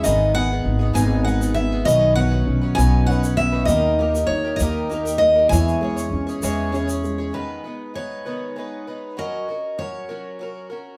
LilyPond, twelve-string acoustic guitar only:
\new Staff \with { instrumentName = "Twelve-string acoustic guitar" } { \time 6/8 \key gis \minor \tempo 4. = 66 <gis, dis gis b dis' gis'>8 <gis b dis' gis'>16 <gis b dis' gis'>8 <gis b dis' gis'>16 <gis, dis gis b dis' gis'>8 <gis b dis' gis'>16 <gis b dis' gis'>8 <gis b dis' gis'>16 | <b, dis fis cis' dis' b'>8 <fis cis' dis' b'>16 <fis cis' dis' b'>8 <fis cis' dis' b'>16 <b, dis fis cis' dis' b'>8 <fis cis' dis' b'>16 <fis cis' dis' b'>8 <fis cis' dis' b'>16 | <dis ais dis' g' ais'>8 <ais dis' g' ais'>16 <dis' g' ais'>8 <dis' g' ais'>16 <dis ais dis' g' ais'>8 <ais dis' g' ais'>16 <dis' g' ais'>8 <dis' g' ais'>16 | <e gis cis' gis' cis''>8 <gis cis' gis' cis''>16 <cis' gis' cis''>8 <cis' gis' cis''>16 <e gis cis' gis' cis''>8 <gis cis' gis' cis''>16 <cis' gis' cis''>8 <cis' gis' cis''>16 |
<gis, dis gis b dis' b'>8 <gis b dis' b'>8 <gis b dis' b'>8 <gis, dis gis b dis' b'>8 <gis b dis' b'>8 <gis b dis' b'>8 | <fis cis' fis' ais'>8 <cis' fis' ais'>8 <fis cis' fis' ais'>8 <fis cis' fis' ais'>8 <fis cis' fis' ais'>8 <cis' fis' ais'>8 | }